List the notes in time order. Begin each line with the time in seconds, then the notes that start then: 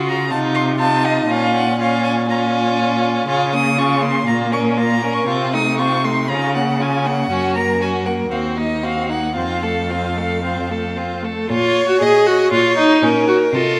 Already playing: C#3 F4 F#4
0.07 A#5
0.29 C3 D#4 F4 A5
0.55 C6
0.78 D#4 F4 A5
1.05 D#5
1.28 A#2 C#4 F4 F5
1.56 F#5
1.79 C#4 F4 F5
2.04 G#5
2.29 C#4 F4 A#5
3.28 C#3 C#4 F4
3.53 A#3 C#4 D#6
3.77 C#4 F4 C#6
4.01 A#3 C#4 C6
4.26 A#2 A#3 F4 A#5
4.52 C#4 A#4 C#6
4.77 A#3 F4 A#5
5.02 C#4 A#4
5.13 C#6
5.28 C3 C4 F4
5.53 A3 D#4 D#6
5.78 C4 F4 C#6
6.04 A3 D#4 C6
6.29 C#3 C#4 F4 A#5
6.54 A#3 C#4 F#5
6.80 C#4 F4 G#5
7.06 A#3 C#4 F#5
7.30 F#2 C#4 F#4
7.55 A#3 A#4 A#5
7.80 C#4 F#4 G#5
8.06 A#3 A#4 F#5
8.31 D#2 C4 F#4 F5
8.57 A#3 D#4 D#5
8.83 C4 F#4 F5
9.09 A#3 D#4 F#5
9.35 F2 C4 F4 F5
9.63 A3 A4
9.89 C4 F4
10.17 A3 A4
10.43 C4 F4
10.70 A3 A4
10.96 C4 F4
11.23 A3 A4
11.50 A#2 F4 C#5
11.76 C#5
11.88 F#4
12.01 A#2 G#4 D#5
12.26 F#4 C#5
12.51 A#2 F4 C#5
12.77 D#4 C#5
13.02 A#2 C#4 A#4
13.28 F#4 C#5
13.53 C3 F4 A4 D#5